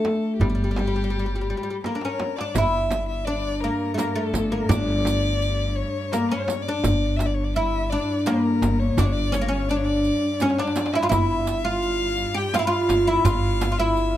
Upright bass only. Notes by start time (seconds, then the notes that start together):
0.40 G1
2.55 G1
4.33 G1
4.69 G1
6.84 G1
8.62 G1
8.97 G1
11.12 G1
12.89 G1
13.24 G1